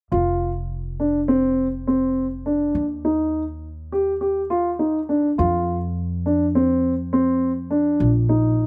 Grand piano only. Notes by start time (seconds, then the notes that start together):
0.12 F4
1.00 D4
1.28 C4
1.87 C4
2.46 D4
3.05 D#4
3.92 G4
4.21 G4
4.50 F4
4.79 D#4
5.09 D4
5.38 F4
6.26 D4
6.55 C4
7.13 C4
7.71 D4
8.29 D#4